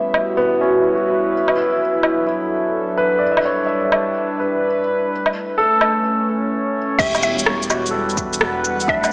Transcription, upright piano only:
0, 0, Header, 1, 2, 480
1, 0, Start_track
1, 0, Tempo, 472441
1, 1346, Time_signature, 4, 2, 24, 8
1, 9272, End_track
2, 0, Start_track
2, 0, Title_t, "Upright piano"
2, 0, Program_c, 0, 0
2, 0, Control_c, 0, 64, 127
2, 0, Note_on_c, 0, 59, 57
2, 362, Note_off_c, 0, 59, 0
2, 378, Note_on_c, 0, 59, 75
2, 620, Note_on_c, 0, 61, 57
2, 827, Note_on_c, 0, 64, 50
2, 966, Note_on_c, 0, 66, 50
2, 1359, Control_c, 0, 64, 0
2, 1542, Note_off_c, 0, 59, 0
2, 1543, Note_off_c, 0, 61, 0
2, 1561, Control_c, 0, 64, 127
2, 1565, Note_off_c, 0, 64, 0
2, 1580, Note_on_c, 0, 64, 68
2, 1836, Note_off_c, 0, 66, 0
2, 2287, Note_off_c, 0, 64, 0
2, 2302, Note_on_c, 0, 64, 56
2, 3023, Note_on_c, 0, 71, 73
2, 3238, Note_on_c, 0, 74, 48
2, 3281, Control_c, 0, 64, 0
2, 3369, Note_on_c, 0, 76, 50
2, 3442, Control_c, 0, 64, 127
2, 3464, Note_off_c, 0, 64, 0
2, 3471, Note_off_c, 0, 71, 0
2, 3509, Note_on_c, 0, 73, 58
2, 3660, Note_off_c, 0, 74, 0
2, 3707, Note_off_c, 0, 76, 0
2, 3722, Note_on_c, 0, 76, 52
2, 4465, Note_on_c, 0, 71, 52
2, 4719, Note_off_c, 0, 73, 0
2, 4880, Note_off_c, 0, 76, 0
2, 5202, Control_c, 0, 64, 0
2, 5385, Note_off_c, 0, 71, 0
2, 5397, Control_c, 0, 64, 127
2, 5666, Note_on_c, 0, 69, 72
2, 6877, Note_off_c, 0, 69, 0
2, 7106, Note_on_c, 0, 67, 58
2, 7120, Control_c, 0, 64, 0
2, 7291, Control_c, 0, 64, 127
2, 7826, Note_on_c, 0, 66, 52
2, 8034, Note_on_c, 0, 69, 54
2, 8317, Note_off_c, 0, 67, 0
2, 9020, Note_on_c, 0, 62, 67
2, 9037, Note_off_c, 0, 66, 0
2, 9038, Control_c, 0, 64, 0
2, 9195, Note_off_c, 0, 69, 0
2, 9231, Control_c, 0, 64, 127
2, 9272, Note_off_c, 0, 62, 0
2, 9272, End_track
0, 0, End_of_file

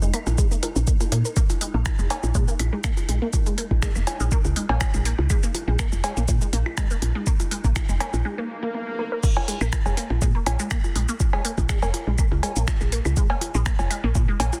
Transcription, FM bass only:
0, 0, Header, 1, 2, 480
1, 0, Start_track
1, 0, Key_signature, -5, "minor"
1, 0, Tempo, 491803
1, 1333, Time_signature, 4, 2, 24, 8
1, 14250, End_track
2, 0, Start_track
2, 0, Title_t, "FM bass"
2, 0, Program_c, 0, 39
2, 21, Note_on_c, 0, 29, 90
2, 113, Note_off_c, 0, 29, 0
2, 261, Note_on_c, 0, 34, 86
2, 353, Note_off_c, 0, 34, 0
2, 742, Note_on_c, 0, 34, 91
2, 833, Note_off_c, 0, 34, 0
2, 1093, Note_on_c, 0, 46, 80
2, 1197, Note_off_c, 0, 46, 0
2, 1701, Note_on_c, 0, 34, 100
2, 1792, Note_off_c, 0, 34, 0
2, 1941, Note_on_c, 0, 29, 91
2, 2033, Note_off_c, 0, 29, 0
2, 2181, Note_on_c, 0, 34, 87
2, 2273, Note_off_c, 0, 34, 0
2, 2293, Note_on_c, 0, 46, 92
2, 2397, Note_off_c, 0, 46, 0
2, 2535, Note_on_c, 0, 34, 85
2, 2638, Note_off_c, 0, 34, 0
2, 3014, Note_on_c, 0, 34, 77
2, 3118, Note_off_c, 0, 34, 0
2, 3621, Note_on_c, 0, 34, 100
2, 3713, Note_off_c, 0, 34, 0
2, 3862, Note_on_c, 0, 29, 89
2, 3953, Note_off_c, 0, 29, 0
2, 4103, Note_on_c, 0, 34, 86
2, 4194, Note_off_c, 0, 34, 0
2, 4343, Note_on_c, 0, 37, 101
2, 4434, Note_off_c, 0, 37, 0
2, 4582, Note_on_c, 0, 34, 96
2, 4673, Note_off_c, 0, 34, 0
2, 4822, Note_on_c, 0, 34, 81
2, 5014, Note_off_c, 0, 34, 0
2, 5062, Note_on_c, 0, 37, 98
2, 5153, Note_off_c, 0, 37, 0
2, 5542, Note_on_c, 0, 34, 97
2, 5633, Note_off_c, 0, 34, 0
2, 5781, Note_on_c, 0, 29, 89
2, 5872, Note_off_c, 0, 29, 0
2, 6022, Note_on_c, 0, 34, 86
2, 6113, Note_off_c, 0, 34, 0
2, 6134, Note_on_c, 0, 46, 94
2, 6238, Note_off_c, 0, 46, 0
2, 6374, Note_on_c, 0, 34, 84
2, 6478, Note_off_c, 0, 34, 0
2, 6854, Note_on_c, 0, 34, 81
2, 6957, Note_off_c, 0, 34, 0
2, 7461, Note_on_c, 0, 34, 97
2, 7552, Note_off_c, 0, 34, 0
2, 7701, Note_on_c, 0, 29, 86
2, 7793, Note_off_c, 0, 29, 0
2, 7941, Note_on_c, 0, 34, 86
2, 8032, Note_off_c, 0, 34, 0
2, 9380, Note_on_c, 0, 34, 101
2, 9472, Note_off_c, 0, 34, 0
2, 9621, Note_on_c, 0, 29, 90
2, 9712, Note_off_c, 0, 29, 0
2, 9861, Note_on_c, 0, 34, 86
2, 9953, Note_off_c, 0, 34, 0
2, 9973, Note_on_c, 0, 46, 92
2, 10077, Note_off_c, 0, 46, 0
2, 10214, Note_on_c, 0, 34, 83
2, 10317, Note_off_c, 0, 34, 0
2, 10694, Note_on_c, 0, 34, 76
2, 10797, Note_off_c, 0, 34, 0
2, 11301, Note_on_c, 0, 34, 99
2, 11392, Note_off_c, 0, 34, 0
2, 11542, Note_on_c, 0, 29, 89
2, 11633, Note_off_c, 0, 29, 0
2, 11782, Note_on_c, 0, 34, 90
2, 11873, Note_off_c, 0, 34, 0
2, 12022, Note_on_c, 0, 37, 96
2, 12113, Note_off_c, 0, 37, 0
2, 12263, Note_on_c, 0, 34, 94
2, 12353, Note_off_c, 0, 34, 0
2, 12501, Note_on_c, 0, 34, 79
2, 12694, Note_off_c, 0, 34, 0
2, 12742, Note_on_c, 0, 37, 100
2, 12833, Note_off_c, 0, 37, 0
2, 13223, Note_on_c, 0, 34, 104
2, 13313, Note_off_c, 0, 34, 0
2, 13461, Note_on_c, 0, 29, 87
2, 13553, Note_off_c, 0, 29, 0
2, 13702, Note_on_c, 0, 34, 88
2, 13793, Note_off_c, 0, 34, 0
2, 13813, Note_on_c, 0, 46, 93
2, 13917, Note_off_c, 0, 46, 0
2, 14053, Note_on_c, 0, 34, 89
2, 14157, Note_off_c, 0, 34, 0
2, 14250, End_track
0, 0, End_of_file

